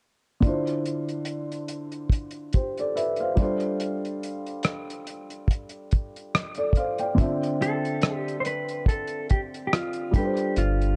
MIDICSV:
0, 0, Header, 1, 5, 480
1, 0, Start_track
1, 0, Key_signature, -1, "minor"
1, 0, Tempo, 845070
1, 237, Time_signature, 4, 2, 24, 8
1, 6226, End_track
2, 0, Start_track
2, 0, Title_t, "Felt piano"
2, 0, Program_c, 0, 0
2, 227, Note_on_c, 0, 50, 64
2, 237, Note_on_c, 0, 62, 61
2, 247, Note_on_c, 0, 64, 58
2, 256, Note_on_c, 0, 65, 60
2, 267, Note_on_c, 0, 72, 76
2, 358, Control_c, 0, 64, 127
2, 1429, Note_off_c, 0, 72, 0
2, 1447, Note_on_c, 0, 72, 56
2, 1450, Note_on_c, 0, 67, 46
2, 1568, Note_off_c, 0, 72, 0
2, 1570, Note_off_c, 0, 67, 0
2, 1588, Note_on_c, 0, 74, 69
2, 1592, Note_on_c, 0, 69, 56
2, 1681, Note_off_c, 0, 74, 0
2, 1681, Note_on_c, 0, 76, 68
2, 1683, Note_off_c, 0, 69, 0
2, 1685, Note_on_c, 0, 71, 62
2, 1805, Note_off_c, 0, 76, 0
2, 1807, Note_off_c, 0, 71, 0
2, 1820, Note_on_c, 0, 77, 60
2, 1823, Note_on_c, 0, 72, 58
2, 1889, Note_off_c, 0, 50, 0
2, 1894, Note_off_c, 0, 62, 0
2, 1899, Note_off_c, 0, 64, 0
2, 1904, Note_off_c, 0, 65, 0
2, 1905, Note_on_c, 0, 55, 65
2, 1915, Note_on_c, 0, 62, 61
2, 1924, Control_c, 0, 64, 0
2, 1924, Note_on_c, 0, 65, 67
2, 1935, Note_on_c, 0, 69, 63
2, 1936, Note_off_c, 0, 72, 0
2, 1944, Note_on_c, 0, 72, 83
2, 2014, Control_c, 0, 64, 127
2, 2043, Note_off_c, 0, 77, 0
2, 3343, Note_off_c, 0, 69, 0
2, 3348, Note_off_c, 0, 72, 0
2, 3736, Note_on_c, 0, 74, 67
2, 3739, Note_on_c, 0, 69, 58
2, 3808, Note_off_c, 0, 55, 0
2, 3813, Note_off_c, 0, 62, 0
2, 3818, Note_off_c, 0, 65, 0
2, 3835, Note_off_c, 0, 74, 0
2, 3836, Note_off_c, 0, 69, 0
2, 3846, Note_on_c, 0, 77, 67
2, 3850, Note_on_c, 0, 72, 57
2, 3968, Note_off_c, 0, 77, 0
2, 3970, Note_off_c, 0, 72, 0
2, 3972, Note_on_c, 0, 79, 65
2, 3976, Note_on_c, 0, 74, 50
2, 4059, Note_on_c, 0, 50, 78
2, 4069, Note_on_c, 0, 62, 64
2, 4079, Note_on_c, 0, 76, 65
2, 4085, Control_c, 0, 64, 0
2, 4089, Note_on_c, 0, 65, 69
2, 4099, Note_on_c, 0, 60, 85
2, 4199, Note_off_c, 0, 79, 0
2, 4200, Control_c, 0, 64, 127
2, 4201, Note_off_c, 0, 74, 0
2, 5725, Note_off_c, 0, 50, 0
2, 5730, Note_off_c, 0, 62, 0
2, 5735, Note_off_c, 0, 76, 0
2, 5740, Note_off_c, 0, 65, 0
2, 5743, Note_on_c, 0, 55, 62
2, 5745, Note_off_c, 0, 60, 0
2, 5754, Note_on_c, 0, 62, 60
2, 5764, Control_c, 0, 64, 0
2, 5764, Note_on_c, 0, 65, 58
2, 5774, Note_on_c, 0, 69, 60
2, 5783, Note_on_c, 0, 71, 60
2, 5811, Note_off_c, 0, 71, 0
2, 5820, Note_on_c, 0, 72, 70
2, 5855, Control_c, 0, 64, 127
2, 6226, Note_off_c, 0, 55, 0
2, 6226, Note_off_c, 0, 62, 0
2, 6226, Note_off_c, 0, 65, 0
2, 6226, Note_off_c, 0, 69, 0
2, 6226, Note_off_c, 0, 72, 0
2, 6226, End_track
3, 0, Start_track
3, 0, Title_t, "Clean electric guitar"
3, 0, Program_c, 1, 27
3, 4329, Note_on_c, 1, 69, 105
3, 4630, Note_off_c, 1, 69, 0
3, 4630, Note_on_c, 1, 67, 105
3, 4745, Note_off_c, 1, 67, 0
3, 4772, Note_on_c, 1, 72, 72
3, 4802, Note_off_c, 1, 72, 0
3, 4808, Note_on_c, 1, 71, 100
3, 5043, Note_off_c, 1, 71, 0
3, 5045, Note_on_c, 1, 69, 89
3, 5264, Note_off_c, 1, 69, 0
3, 5285, Note_on_c, 1, 67, 86
3, 5339, Note_off_c, 1, 67, 0
3, 5494, Note_on_c, 1, 67, 67
3, 5523, Note_off_c, 1, 67, 0
3, 5528, Note_on_c, 1, 65, 88
3, 5769, Note_off_c, 1, 65, 0
3, 5769, Note_on_c, 1, 67, 77
3, 5986, Note_off_c, 1, 67, 0
3, 6010, Note_on_c, 1, 65, 86
3, 6226, Note_off_c, 1, 65, 0
3, 6226, End_track
4, 0, Start_track
4, 0, Title_t, "Sub bass"
4, 0, Program_c, 2, 38
4, 6004, Note_on_c, 2, 31, 108
4, 6226, Note_off_c, 2, 31, 0
4, 6226, End_track
5, 0, Start_track
5, 0, Title_t, "Drums"
5, 239, Note_on_c, 9, 36, 104
5, 239, Note_on_c, 9, 42, 62
5, 296, Note_off_c, 9, 36, 0
5, 296, Note_off_c, 9, 42, 0
5, 380, Note_on_c, 9, 42, 37
5, 437, Note_off_c, 9, 42, 0
5, 485, Note_on_c, 9, 42, 60
5, 542, Note_off_c, 9, 42, 0
5, 616, Note_on_c, 9, 42, 38
5, 673, Note_off_c, 9, 42, 0
5, 710, Note_on_c, 9, 42, 66
5, 767, Note_off_c, 9, 42, 0
5, 862, Note_on_c, 9, 42, 41
5, 919, Note_off_c, 9, 42, 0
5, 957, Note_on_c, 9, 42, 68
5, 1014, Note_off_c, 9, 42, 0
5, 1090, Note_on_c, 9, 42, 39
5, 1147, Note_off_c, 9, 42, 0
5, 1192, Note_on_c, 9, 36, 84
5, 1206, Note_on_c, 9, 42, 67
5, 1248, Note_off_c, 9, 36, 0
5, 1263, Note_off_c, 9, 42, 0
5, 1312, Note_on_c, 9, 42, 45
5, 1369, Note_off_c, 9, 42, 0
5, 1437, Note_on_c, 9, 42, 56
5, 1446, Note_on_c, 9, 36, 80
5, 1494, Note_off_c, 9, 42, 0
5, 1503, Note_off_c, 9, 36, 0
5, 1578, Note_on_c, 9, 42, 41
5, 1635, Note_off_c, 9, 42, 0
5, 1688, Note_on_c, 9, 42, 64
5, 1744, Note_off_c, 9, 42, 0
5, 1798, Note_on_c, 9, 42, 39
5, 1854, Note_off_c, 9, 42, 0
5, 1914, Note_on_c, 9, 42, 71
5, 1916, Note_on_c, 9, 36, 100
5, 1971, Note_off_c, 9, 42, 0
5, 1973, Note_off_c, 9, 36, 0
5, 2045, Note_on_c, 9, 42, 38
5, 2102, Note_off_c, 9, 42, 0
5, 2158, Note_on_c, 9, 42, 68
5, 2215, Note_off_c, 9, 42, 0
5, 2299, Note_on_c, 9, 42, 38
5, 2356, Note_off_c, 9, 42, 0
5, 2404, Note_on_c, 9, 42, 61
5, 2461, Note_off_c, 9, 42, 0
5, 2536, Note_on_c, 9, 42, 39
5, 2593, Note_off_c, 9, 42, 0
5, 2630, Note_on_c, 9, 42, 67
5, 2639, Note_on_c, 9, 37, 92
5, 2686, Note_off_c, 9, 42, 0
5, 2696, Note_off_c, 9, 37, 0
5, 2783, Note_on_c, 9, 42, 42
5, 2840, Note_off_c, 9, 42, 0
5, 2878, Note_on_c, 9, 42, 67
5, 2935, Note_off_c, 9, 42, 0
5, 3012, Note_on_c, 9, 42, 39
5, 3068, Note_off_c, 9, 42, 0
5, 3112, Note_on_c, 9, 36, 78
5, 3128, Note_on_c, 9, 42, 76
5, 3169, Note_off_c, 9, 36, 0
5, 3185, Note_off_c, 9, 42, 0
5, 3234, Note_on_c, 9, 42, 42
5, 3291, Note_off_c, 9, 42, 0
5, 3358, Note_on_c, 9, 42, 52
5, 3366, Note_on_c, 9, 36, 85
5, 3415, Note_off_c, 9, 42, 0
5, 3423, Note_off_c, 9, 36, 0
5, 3500, Note_on_c, 9, 42, 41
5, 3557, Note_off_c, 9, 42, 0
5, 3606, Note_on_c, 9, 37, 111
5, 3609, Note_on_c, 9, 42, 66
5, 3663, Note_off_c, 9, 37, 0
5, 3666, Note_off_c, 9, 42, 0
5, 3718, Note_on_c, 9, 42, 43
5, 3775, Note_off_c, 9, 42, 0
5, 3822, Note_on_c, 9, 36, 82
5, 3836, Note_on_c, 9, 42, 67
5, 3879, Note_off_c, 9, 36, 0
5, 3893, Note_off_c, 9, 42, 0
5, 3967, Note_on_c, 9, 42, 41
5, 4024, Note_off_c, 9, 42, 0
5, 4078, Note_on_c, 9, 42, 69
5, 4079, Note_on_c, 9, 36, 106
5, 4135, Note_off_c, 9, 42, 0
5, 4136, Note_off_c, 9, 36, 0
5, 4222, Note_on_c, 9, 42, 39
5, 4279, Note_off_c, 9, 42, 0
5, 4326, Note_on_c, 9, 42, 67
5, 4383, Note_off_c, 9, 42, 0
5, 4457, Note_on_c, 9, 42, 40
5, 4514, Note_off_c, 9, 42, 0
5, 4551, Note_on_c, 9, 42, 71
5, 4561, Note_on_c, 9, 37, 105
5, 4608, Note_off_c, 9, 42, 0
5, 4618, Note_off_c, 9, 37, 0
5, 4703, Note_on_c, 9, 42, 44
5, 4760, Note_off_c, 9, 42, 0
5, 4798, Note_on_c, 9, 42, 74
5, 4855, Note_off_c, 9, 42, 0
5, 4933, Note_on_c, 9, 42, 40
5, 4990, Note_off_c, 9, 42, 0
5, 5032, Note_on_c, 9, 36, 86
5, 5048, Note_on_c, 9, 42, 76
5, 5089, Note_off_c, 9, 36, 0
5, 5105, Note_off_c, 9, 42, 0
5, 5154, Note_on_c, 9, 42, 43
5, 5210, Note_off_c, 9, 42, 0
5, 5279, Note_on_c, 9, 42, 54
5, 5287, Note_on_c, 9, 36, 86
5, 5336, Note_off_c, 9, 42, 0
5, 5344, Note_off_c, 9, 36, 0
5, 5420, Note_on_c, 9, 42, 43
5, 5477, Note_off_c, 9, 42, 0
5, 5527, Note_on_c, 9, 37, 108
5, 5530, Note_on_c, 9, 42, 72
5, 5583, Note_off_c, 9, 37, 0
5, 5587, Note_off_c, 9, 42, 0
5, 5640, Note_on_c, 9, 42, 45
5, 5697, Note_off_c, 9, 42, 0
5, 5757, Note_on_c, 9, 36, 97
5, 5758, Note_on_c, 9, 42, 70
5, 5814, Note_off_c, 9, 36, 0
5, 5815, Note_off_c, 9, 42, 0
5, 5888, Note_on_c, 9, 42, 44
5, 5945, Note_off_c, 9, 42, 0
5, 6000, Note_on_c, 9, 42, 73
5, 6056, Note_off_c, 9, 42, 0
5, 6142, Note_on_c, 9, 42, 39
5, 6199, Note_off_c, 9, 42, 0
5, 6226, End_track
0, 0, End_of_file